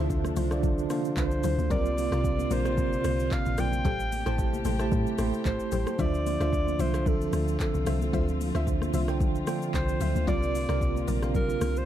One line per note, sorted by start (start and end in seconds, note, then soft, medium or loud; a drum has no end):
0.00 0.34 D2 loud
0.00 1.66 C3 medium
0.00 0.51 D3 medium
0.00 1.66 F3 medium
0.00 0.51 D4 medium
0.00 1.66 D4 medium
0.00 0.51 F4 medium
0.00 0.52 C5 medium
0.00 0.40 E5 medium
0.00 0.91 F5 medium
0.10 kick medium
0.10 shaker medium
0.24 cross-stick medium
0.24 high conga medium
0.24 shaker medium
0.36 0.87 C2 medium
0.36 0.50 E4 medium
0.36 0.50 F4 medium
0.36 0.50 C5 medium
0.36 open hi-hat medium
0.36 high conga medium
0.36 low conga medium
0.36 shaker loud
0.51 0.83 D3 loud
0.51 0.83 D4 medium
0.51 0.83 F4 medium
0.51 0.83 C5 medium
0.51 0.83 D5 loud
0.51 cross-stick medium
0.51 shaker medium
0.63 kick loud
0.63 low conga medium
0.63 shaker medium
0.78 shaker medium
0.90 1.55 D3 medium
0.90 1.55 D4 medium
0.90 1.56 F4 medium
0.90 1.56 C5 medium
0.90 1.56 F5 loud
0.90 cross-stick loud
0.90 open hi-hat medium
0.90 high conga medium
0.90 shaker loud
1.05 shaker medium
1.17 1.42 C2 loud
1.17 1.73 C5 medium
1.17 kick loud
1.17 clap medium
1.17 shaker medium
1.31 shaker medium
1.43 1.58 D2 loud
1.43 1.69 E4 medium
1.43 1.69 F4 medium
1.43 1.69 C5 medium
1.43 open hi-hat medium
1.43 low conga medium
1.43 shaker loud
1.59 1.70 D2 medium
1.59 high conga medium
1.59 shaker medium
1.70 2.10 C2 loud
1.70 2.03 C3 loud
1.70 3.83 D3 medium
1.70 3.83 A#3 medium
1.70 2.03 C4 medium
1.70 2.08 F4 medium
1.70 3.83 F4 medium
1.70 2.03 F4 medium
1.70 2.09 A#4 medium
1.70 2.03 A#4 medium
1.70 2.09 D5 loud
1.70 2.04 D5 loud
1.70 2.54 D5 loud
1.70 kick loud
1.70 low conga medium
1.70 shaker medium
1.85 shaker medium
1.98 open hi-hat medium
1.98 high conga medium
1.98 shaker loud
2.12 2.49 C2 loud
2.12 2.54 C3 medium
2.12 2.54 C4 medium
2.12 2.23 F4 medium
2.12 2.54 F4 medium
2.12 2.23 A#4 medium
2.12 2.54 A#4 medium
2.12 2.23 D5 medium
2.12 2.54 F5 medium
2.12 cross-stick medium
2.12 shaker medium
2.24 kick medium
2.24 shaker medium
2.39 high conga medium
2.39 shaker medium
2.51 3.01 A#1 loud
2.51 2.64 F4 medium
2.51 2.65 A#4 medium
2.51 3.34 C5 loud
2.51 2.65 D5 medium
2.51 open hi-hat medium
2.51 high conga medium
2.51 low conga medium
2.51 shaker loud
2.65 3.51 C3 medium
2.65 3.51 C4 medium
2.65 3.51 F4 medium
2.65 3.51 A#4 medium
2.65 2.72 C5 medium
2.65 cross-stick medium
2.65 shaker medium
2.73 3.54 D5 medium
2.78 kick loud
2.78 low conga medium
2.78 shaker medium
2.93 shaker medium
3.04 3.30 C2 loud
3.04 cross-stick loud
3.04 open hi-hat medium
3.04 high conga medium
3.04 shaker loud
3.20 shaker medium
3.31 3.61 F5 loud
3.31 kick loud
3.31 clap loud
3.31 shaker medium
3.46 3.57 A#1 medium
3.46 shaker medium
3.58 3.83 A#1 loud
3.58 3.83 F4 medium
3.58 3.83 A#4 medium
3.58 3.83 D5 medium
3.58 4.66 G5 loud
3.58 cross-stick loud
3.58 open hi-hat medium
3.58 low conga medium
3.58 shaker loud
3.73 high conga medium
3.73 shaker medium
3.85 4.24 A1 loud
3.85 5.97 C3 medium
3.85 5.97 A3 medium
3.85 5.97 G4 medium
3.85 4.23 G4 medium
3.85 4.23 A4 medium
3.85 4.23 C5 loud
3.85 kick loud
3.85 low conga medium
3.85 shaker medium
4.00 shaker medium
4.12 open hi-hat medium
4.12 high conga medium
4.12 shaker loud
4.26 4.63 A1 loud
4.26 4.68 A3 medium
4.26 4.68 E4 medium
4.26 4.37 G4 medium
4.26 4.68 G4 medium
4.26 4.37 A4 medium
4.26 4.38 C5 medium
4.26 4.68 C5 medium
4.26 4.69 A5 loud
4.26 cross-stick medium
4.26 shaker medium
4.38 kick medium
4.38 shaker medium
4.53 high conga medium
4.53 shaker medium
4.65 4.90 A1 medium
4.65 4.79 G4 medium
4.65 4.79 A4 medium
4.65 4.79 C5 medium
4.65 open hi-hat medium
4.65 high conga medium
4.65 low conga medium
4.65 shaker loud
4.79 5.11 A3 medium
4.79 5.11 E4 medium
4.79 5.12 G4 medium
4.79 5.12 C5 medium
4.79 5.12 A5 loud
4.79 cross-stick loud
4.79 shaker medium
4.92 5.06 A2 loud
4.92 kick loud
4.92 low conga medium
4.92 shaker medium
5.07 shaker medium
5.18 5.33 A1 medium
5.18 5.84 A3 medium
5.18 5.84 E4 medium
5.18 5.84 G4 medium
5.18 5.84 C5 medium
5.18 5.85 C6 loud
5.18 cross-stick loud
5.18 open hi-hat medium
5.18 high conga medium
5.18 shaker loud
5.33 shaker medium
5.45 5.59 A1 loud
5.45 6.02 C5 loud
5.45 kick loud
5.45 clap loud
5.45 shaker medium
5.60 shaker medium
5.72 5.86 A1 medium
5.72 5.97 G4 medium
5.72 5.97 A4 medium
5.72 5.97 C5 medium
5.72 open hi-hat medium
5.72 low conga medium
5.72 shaker loud
5.87 cross-stick loud
5.87 high conga medium
5.87 shaker medium
5.98 6.38 D2 loud
5.98 6.31 D3 loud
5.98 10.24 F3 medium
5.98 10.24 C4 medium
5.98 6.32 D4 medium
5.98 6.37 F4 medium
5.98 6.32 F4 medium
5.98 11.85 F4 medium
5.98 6.37 C5 medium
5.98 6.32 C5 medium
5.98 6.82 D5 loud
5.98 6.37 E5 loud
5.98 6.32 E5 loud
5.98 kick loud
5.98 low conga medium
5.98 shaker medium
6.14 shaker medium
6.27 open hi-hat medium
6.27 high conga medium
6.27 shaker loud
6.40 6.77 D2 loud
6.40 6.82 D3 medium
6.40 6.82 D4 medium
6.40 6.52 F4 medium
6.40 6.83 F4 medium
6.40 6.52 C5 medium
6.40 6.83 C5 medium
6.40 6.52 E5 medium
6.40 6.83 F5 medium
6.40 cross-stick medium
6.40 shaker medium
6.53 kick medium
6.53 shaker medium
6.67 high conga medium
6.67 shaker medium
6.79 7.30 C2 medium
6.79 6.93 F4 medium
6.79 6.93 C5 medium
6.79 7.09 C5 loud
6.79 6.93 E5 medium
6.79 open hi-hat medium
6.79 high conga medium
6.79 low conga medium
6.79 shaker loud
6.94 7.79 D3 medium
6.94 7.79 D4 medium
6.94 7.79 F4 medium
6.94 7.80 C5 medium
6.94 7.80 E5 medium
6.94 cross-stick medium
6.94 shaker medium
7.06 7.61 A4 loud
7.06 kick loud
7.06 low conga medium
7.06 shaker medium
7.21 shaker medium
7.33 7.58 D2 loud
7.33 cross-stick loud
7.33 open hi-hat medium
7.33 high conga medium
7.33 shaker loud
7.48 shaker medium
7.60 7.99 A4 medium
7.60 kick medium
7.60 clap medium
7.60 shaker medium
7.74 7.86 C2 medium
7.74 shaker medium
7.86 8.12 C2 loud
7.86 8.11 F4 medium
7.86 8.12 C5 medium
7.86 8.12 E5 medium
7.86 cross-stick loud
7.86 open hi-hat medium
7.86 low conga medium
7.86 shaker loud
8.02 8.52 A4 medium
8.02 high conga medium
8.02 shaker medium
8.13 8.52 D2 loud
8.13 8.51 F4 medium
8.13 8.51 C5 medium
8.13 8.52 E5 loud
8.13 kick loud
8.13 low conga medium
8.13 shaker medium
8.29 shaker medium
8.41 open hi-hat medium
8.41 high conga medium
8.41 shaker loud
8.54 8.91 D2 medium
8.54 8.96 D3 medium
8.54 8.97 D4 medium
8.54 8.66 F4 medium
8.54 8.97 F4 medium
8.54 8.66 C5 medium
8.54 8.97 C5 medium
8.54 8.66 E5 medium
8.54 8.97 E5 medium
8.54 cross-stick medium
8.54 shaker medium
8.67 kick medium
8.67 shaker medium
8.82 cross-stick medium
8.82 high conga medium
8.82 shaker medium
8.94 9.44 C2 medium
8.94 9.07 F4 medium
8.94 9.07 C5 medium
8.94 9.07 E5 medium
8.94 open hi-hat medium
8.94 high conga medium
8.94 low conga medium
8.94 shaker loud
9.08 9.40 D3 medium
9.08 9.40 D4 medium
9.08 9.40 F4 medium
9.08 9.40 C5 medium
9.08 9.41 G5 loud
9.08 cross-stick medium
9.08 shaker medium
9.20 kick loud
9.20 low conga medium
9.20 shaker medium
9.35 shaker medium
9.47 10.12 D3 medium
9.47 10.12 D4 medium
9.47 10.13 F4 medium
9.47 10.13 C5 medium
9.47 10.13 G5 loud
9.47 cross-stick loud
9.47 open hi-hat medium
9.47 high conga medium
9.47 shaker loud
9.62 shaker medium
9.74 9.99 C2 loud
9.74 10.25 C5 loud
9.74 kick loud
9.74 clap medium
9.74 shaker medium
9.89 shaker medium
10.01 10.15 D2 loud
10.01 10.26 F4 medium
10.01 10.26 C5 medium
10.01 10.26 E5 medium
10.01 open hi-hat medium
10.01 low conga medium
10.01 shaker loud
10.16 10.27 D2 medium
10.16 high conga medium
10.16 shaker medium
10.27 10.67 C2 loud
10.27 10.60 C3 medium
10.27 11.85 D3 medium
10.27 11.85 A#3 medium
10.27 10.60 C4 medium
10.27 10.65 F4 medium
10.27 10.60 F4 medium
10.27 10.66 A#4 medium
10.27 10.60 A#4 medium
10.27 10.66 D5 loud
10.27 10.61 D5 loud
10.27 11.04 D5 loud
10.27 kick loud
10.27 low conga medium
10.27 shaker medium
10.43 shaker medium
10.55 open hi-hat medium
10.55 high conga medium
10.55 shaker loud
10.68 11.06 C2 medium
10.68 11.11 C3 medium
10.68 11.11 C4 medium
10.68 10.80 F4 medium
10.68 11.11 F4 medium
10.68 10.80 A#4 medium
10.68 11.11 A#4 medium
10.68 10.80 D5 medium
10.68 11.11 F5 medium
10.68 cross-stick medium
10.68 shaker medium
10.81 kick medium
10.81 shaker medium
10.96 high conga medium
10.96 shaker medium
11.07 11.58 A#1 medium
11.07 11.21 F4 medium
11.07 11.21 A#4 medium
11.07 11.22 D5 medium
11.07 open hi-hat medium
11.07 high conga medium
11.07 low conga medium
11.07 shaker loud
11.22 11.85 C3 medium
11.22 11.85 C4 medium
11.22 11.85 F4 medium
11.22 11.85 A#4 medium
11.22 11.85 F5 medium
11.22 cross-stick medium
11.22 shaker medium
11.35 11.79 A#4 loud
11.35 kick loud
11.35 low conga medium
11.35 shaker medium
11.50 shaker medium
11.61 11.85 C2 loud
11.61 cross-stick loud
11.61 open hi-hat medium
11.61 high conga medium
11.61 shaker loud
11.76 11.85 C5 loud
11.76 shaker medium